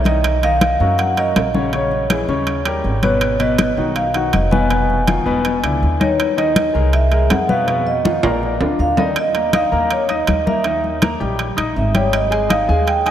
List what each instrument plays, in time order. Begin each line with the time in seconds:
Already playing: upright bass B1
0.04 grand piano D#3 D#4 D#5, vibraphone D#5, high conga, high timbale
0.24 high conga, high timbale
0.43 grand piano D#3 D#4 D#5, vibraphone F5, high conga, high timbale
0.61 high conga, high timbale
0.80 upright bass F#2, grand piano F#3 F#4 A#4, high conga
0.98 vibraphone F#5, high conga, high timbale
1.17 grand piano F#3 F#4 A#4, vibraphone D#5, high conga, high timbale
1.36 upright bass A#1, high conga, high timbale, low timbale
1.54 grand piano C#3 C#4 C#5, high conga
1.73 grand piano C#3 C#4 C#5, vibraphone C#5, high conga, high timbale
1.91 high conga
2.10 grand piano E3 E4 G#4, high conga, high timbale
2.28 upright bass D#2, grand piano C#3 C#4 C#5, high conga
2.47 high conga, high timbale
2.65 grand piano G3 G4 A#4, high conga, high timbale
2.84 upright bass G#1, high conga
3.03 grand piano B2 B3 B4, vibraphone C#5, high conga, high timbale
3.21 high conga, high timbale
3.39 grand piano B2 B3 B4, vibraphone D#5, high conga, high timbale
3.58 high conga, high timbale
3.77 upright bass B1, grand piano D#3 D#4 F#4, high conga
3.95 vibraphone F5, high conga, high timbale
4.14 grand piano D#3 D#4 F#4, vibraphone F#5, high conga, high timbale
4.33 upright bass F1, vibraphone D#5, high conga, high timbale
4.51 grand piano B2 B3 B4, vibraphone G#5, high conga
4.69 grand piano B2 B3 B4, high conga, high timbale
4.90 high conga
5.07 grand piano D#3 D#4 F4, high conga, high timbale
5.25 upright bass E1, grand piano B2 B3 B4, high conga
5.45 high conga, high timbale
5.63 upright bass C#2, grand piano D3 D4 E4, high conga, high timbale
5.82 upright bass D#2, high conga
6.00 grand piano D#3 D#4 D#5, vibraphone C#5, high conga, high timbale
6.20 high conga, high timbale
6.37 grand piano D#3 D#4 D#5, vibraphone D#5, high conga, high timbale
6.56 high conga, high timbale
6.74 upright bass C2, grand piano G#3 G#4 A#4, high conga
6.93 vibraphone E5, high conga, high timbale
7.11 grand piano G#3 G#4 A#4, high conga, high timbale
7.30 upright bass F2, vibraphone F#5, high conga, high timbale, low timbale
7.49 grand piano B2 B3 B4, vibraphone F5, high conga
7.67 grand piano B2 B3 B4, high conga, high timbale
7.87 vibraphone D#5, high conga
8.04 grand piano D#3 D#4 F4, high conga, high timbale
8.23 upright bass A#1, grand piano A#2 A#3 A#4, vibraphone D5, high conga, high timbale
8.43 high conga
8.60 upright bass D2, grand piano D3 D4 F4, high conga, low timbale
8.79 upright bass D#2, vibraphone F5, high conga
8.97 grand piano D#3 D#4 D#5, vibraphone D5, high conga, low timbale
9.16 vibraphone D#5, high conga, high timbale
9.35 grand piano A#3 A#4 A#5, high conga, high timbale
9.53 grand piano D#4 D#5 D#6, vibraphone F5, high conga, high timbale
9.72 upright bass D#2, grand piano A#3 A#4 A#5, high conga
9.90 vibraphone C#5, high conga, high timbale
10.09 grand piano D#4 D#5 D#6, vibraphone D#5, high conga, high timbale
10.27 upright bass D#2, high conga, high timbale
10.46 grand piano A#3 A#4 A#5, vibraphone E5, high conga
10.64 grand piano D#3 D#4 D#5, high conga, high timbale
10.84 high conga
11.02 grand piano A#3 A#4 A#5, high conga, high timbale
11.20 upright bass A#1, grand piano G3 G4 G5, high conga
11.39 high conga, high timbale
11.56 upright bass A#1, grand piano D#4 D#5 D#6, high conga, high timbale
11.76 upright bass G#1, vibraphone E5, high conga
11.94 grand piano G3 G4 G5, vibraphone C#5, high conga, high timbale
12.13 high conga, high timbale
12.31 grand piano G#3 G#4 G#5, high conga, high timbale
12.49 grand piano D#4 D#5 D#6, vibraphone F5, high conga, high timbale
12.68 upright bass D#2, grand piano G#3 G#4 G#5, high conga
12.87 vibraphone G5, high conga, high timbale
13.05 grand piano D#4 D#5 D#6, vibraphone G#5, high conga, high timbale